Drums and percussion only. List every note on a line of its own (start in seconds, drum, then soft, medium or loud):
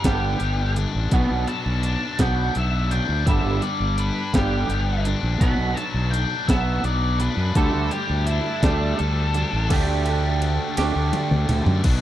0.04 kick medium
0.04 snare loud
0.04 closed hi-hat loud
0.40 closed hi-hat medium
0.76 closed hi-hat medium
1.11 kick loud
1.11 closed hi-hat medium
1.47 closed hi-hat medium
1.83 closed hi-hat medium
2.19 kick medium
2.19 snare loud
2.19 closed hi-hat medium
2.55 closed hi-hat medium
2.91 closed hi-hat medium
3.27 kick loud
3.27 closed hi-hat medium
3.62 closed hi-hat medium
3.98 closed hi-hat medium
4.34 kick medium
4.34 snare loud
4.34 closed hi-hat loud
4.70 closed hi-hat medium
5.05 closed hi-hat medium
5.41 kick loud
5.41 closed hi-hat medium
5.77 closed hi-hat medium
6.14 closed hi-hat medium
6.48 kick medium
6.48 snare loud
6.48 closed hi-hat loud
6.84 closed hi-hat medium
7.20 closed hi-hat medium
7.55 kick loud
7.55 closed hi-hat medium
7.91 closed hi-hat medium
8.27 closed hi-hat medium
8.63 kick medium
8.63 snare loud
8.63 closed hi-hat loud
8.99 closed hi-hat medium
9.34 closed hi-hat medium
9.70 kick loud
9.70 crash loud
9.70 ride loud
10.06 ride medium
10.42 ride medium
10.77 snare medium
10.77 ride loud
11.13 high tom medium
11.13 ride medium
11.31 mid tom medium
11.49 mid tom medium
11.49 ride medium
11.66 floor tom loud
11.84 kick loud
11.84 crash loud
11.84 ride loud